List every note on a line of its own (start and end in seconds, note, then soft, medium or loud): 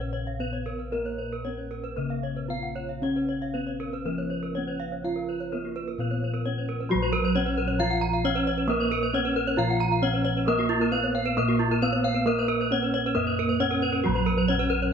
0.00 1.96 A#1 medium
0.00 0.92 C#3 soft
0.00 0.41 C#4 soft
0.00 0.36 A#4 medium
0.00 0.14 B4 soft
0.13 0.26 C#5 soft
0.27 0.40 F5 soft
0.40 0.48 B3 soft
0.40 0.93 B3 soft
0.40 0.53 B4 medium
0.53 0.66 C#5 soft
0.66 0.79 A#4 soft
0.79 0.92 B4 soft
0.91 1.96 A#3 soft
0.91 1.46 A#3 soft
0.91 1.06 A#4 soft
0.91 2.46 A#4 medium
1.05 1.19 C#5 soft
1.18 1.32 B4 soft
1.33 1.45 A#4 soft
1.45 1.53 B3 soft
1.45 1.98 C#4 soft
1.45 1.58 C#5 soft
1.58 1.71 B4 soft
1.71 1.84 A#4 soft
1.84 1.97 B4 soft
1.96 3.51 C#3 medium
1.96 2.50 A#3 soft
1.96 3.03 A#3 soft
1.96 2.10 A#4 soft
2.10 2.24 F5 soft
2.23 2.37 C#5 soft
2.36 2.50 B4 soft
2.48 2.59 B3 soft
2.48 3.02 F4 soft
2.48 2.63 F5 medium
2.63 2.76 F#5 soft
2.75 2.89 C#5 soft
2.89 3.03 F5 soft
3.02 4.06 C#3 soft
3.02 4.51 C#4 medium
3.02 3.55 C#4 soft
3.02 3.16 C#5 soft
3.16 3.29 B4 soft
3.29 3.42 C#5 soft
3.42 3.55 F5 soft
3.54 4.06 B3 soft
3.54 3.63 B3 soft
3.54 3.67 B4 soft
3.67 3.80 C#5 soft
3.80 3.93 A#4 soft
3.93 4.06 B4 soft
4.05 5.48 F3 medium
4.05 5.04 A#3 soft
4.05 4.56 A#3 soft
4.05 4.18 A#4 soft
4.18 4.31 C#5 soft
4.30 4.43 B4 soft
4.43 4.56 A#4 soft
4.55 4.64 B3 soft
4.55 5.05 C#4 soft
4.55 4.68 C#5 soft
4.67 4.80 B4 soft
4.80 4.92 F5 soft
4.92 5.05 C#5 soft
5.04 6.00 F3 soft
5.04 6.41 F4 medium
5.04 5.52 F4 soft
5.04 5.17 F5 soft
5.16 5.28 A#4 soft
5.29 5.41 B4 soft
5.40 5.52 C#5 soft
5.52 5.99 A#3 soft
5.52 5.61 B3 soft
5.52 5.64 A#4 soft
5.65 5.76 F#4 soft
5.76 5.88 B4 soft
5.88 5.99 A#4 soft
5.98 7.30 A#2 medium
5.98 6.45 B3 soft
5.98 6.91 B3 soft
5.98 6.11 B4 soft
6.11 6.22 C#5 soft
6.24 6.35 B4 soft
6.34 6.45 A#4 soft
6.45 6.53 B3 soft
6.45 6.91 C#4 soft
6.45 6.57 C#5 medium
6.58 6.69 B4 soft
6.69 6.80 A#4 soft
6.80 6.91 B4 soft
6.89 7.79 F#3 medium
6.89 7.36 F#3 medium
6.89 8.20 F#4 medium
6.89 7.02 F#4 loud
6.95 9.56 A#1 loud
7.02 7.13 B4 medium
7.13 7.24 A#4 loud
7.25 7.35 B4 medium
7.35 7.43 B3 soft
7.35 7.80 C#4 medium
7.35 7.46 C#5 medium
7.46 7.57 B4 medium
7.58 7.69 A#4 medium
7.68 7.79 C#5 medium
7.79 8.68 F3 medium
7.79 8.24 F4 medium
7.79 7.91 F5 loud
7.90 8.02 F#5 medium
8.01 8.13 A#5 medium
8.13 8.24 F5 medium
8.25 8.32 B3 soft
8.25 8.69 C#4 medium
8.25 8.36 C#5 loud
8.35 8.46 B4 medium
8.47 8.58 C#5 medium
8.58 8.69 B4 medium
8.68 9.13 A#3 loud
8.68 9.58 A#3 medium
8.68 9.99 A#4 medium
8.68 8.80 A#4 medium
8.80 8.91 B4 medium
8.92 9.03 A#4 medium
9.03 9.14 B4 medium
9.13 9.22 B3 soft
9.13 9.58 C#4 medium
9.13 9.25 C#5 medium
9.25 9.36 B4 medium
9.36 9.47 A#4 medium
9.47 9.58 C#5 medium
9.57 10.88 A#2 medium
9.57 10.47 F3 medium
9.57 10.02 F4 loud
9.57 9.69 F5 medium
9.70 9.81 F#5 medium
9.80 9.91 A#5 medium
9.92 10.03 F5 medium
10.02 10.11 B3 medium
10.02 10.47 C#4 medium
10.02 10.14 C#5 loud
10.14 10.25 B4 medium
10.25 10.36 C#5 medium
10.37 10.48 B4 medium
10.46 11.35 A#3 medium
10.46 10.92 A#3 loud
10.46 11.77 A#4 medium
10.46 10.59 A#4 medium
10.59 10.70 F#4 medium
10.69 10.80 F4 loud
10.81 10.92 A#4 medium
10.92 11.36 B3 medium
10.92 11.00 B3 soft
10.92 11.03 B4 loud
11.04 11.14 C#5 medium
11.15 11.26 F5 medium
11.25 11.36 B4 medium
11.37 12.67 A#2 medium
11.37 12.24 A#3 medium
11.37 11.81 A#3 loud
11.37 11.48 A#4 medium
11.48 11.59 F#4 medium
11.59 11.70 F4 medium
11.71 11.82 A#4 medium
11.81 11.89 B3 soft
11.81 12.26 B3 loud
11.81 11.93 B4 loud
11.93 12.04 C#5 medium
12.04 12.15 F5 medium
12.14 12.26 B4 medium
12.26 13.15 A#3 medium
12.26 12.70 A#3 medium
12.26 13.56 A#4 medium
12.26 12.37 A#4 loud
12.39 12.49 B4 medium
12.48 12.59 A#4 loud
12.61 12.71 B4 medium
12.71 12.79 B3 soft
12.71 13.15 C#4 medium
12.71 12.82 C#5 medium
12.83 12.93 B4 medium
12.94 13.04 C#5 medium
13.06 13.16 B4 medium
13.15 14.45 F#2 medium
13.15 13.60 A#3 medium
13.15 14.05 A#3 medium
13.15 13.26 A#4 medium
13.27 13.37 B4 medium
13.39 13.49 A#4 medium
13.49 13.60 B4 medium
13.60 13.68 B3 soft
13.60 14.04 C#4 medium
13.60 13.71 C#5 loud
13.71 13.82 A#4 medium
13.82 13.93 B4 medium
13.93 14.04 A#4 medium
14.04 14.93 F#3 medium
14.04 14.49 F#3 loud
14.04 14.15 F#4 medium
14.04 14.93 F#4 medium
14.08 14.93 A#1 loud
14.15 14.26 B4 medium
14.26 14.38 A#4 medium
14.38 14.49 B4 medium
14.48 14.56 B3 soft
14.48 14.93 C#4 medium
14.48 14.60 C#5 loud
14.59 14.71 B4 medium
14.70 14.82 A#4 medium
14.82 14.93 C#5 medium